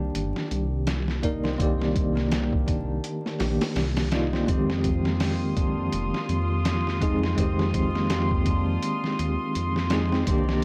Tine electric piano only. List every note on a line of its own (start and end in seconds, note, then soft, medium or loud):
0.00 1.20 D#3 medium
0.00 1.19 A#3 medium
0.00 1.19 D4 medium
0.00 1.21 G4 medium
1.23 1.56 A#3 medium
1.23 1.56 D#4 medium
1.23 1.57 A#4 medium
1.23 1.56 D5 medium
1.58 3.38 D#3 medium
1.58 3.36 A#3 medium
1.58 3.37 D5 medium
1.62 3.39 G4 loud
3.39 4.09 D#3 medium
3.39 4.09 A#3 medium
3.39 4.09 D4 medium
3.39 4.09 G4 medium
4.11 4.44 A#3 medium
4.11 4.45 D#4 medium
4.11 4.46 F4 medium
4.11 4.45 D5 medium
4.46 6.98 D#3 medium
4.46 6.97 G#3 medium
4.46 6.98 C4 medium
4.51 6.99 G4 loud
7.01 7.34 G#3 medium
7.01 7.34 C4 medium
7.01 7.35 D#4 medium
7.01 7.35 G#4 medium
7.36 9.88 D#3 medium
7.36 9.86 G#3 medium
7.36 9.87 C4 medium
7.40 9.88 G4 loud
9.91 10.23 G#3 medium
9.91 10.24 C4 medium
9.91 10.24 D#4 medium
9.91 10.24 G#4 medium
10.26 10.64 D#3 medium
10.26 10.64 A#3 medium
10.26 10.64 D4 medium
10.31 10.64 G4 loud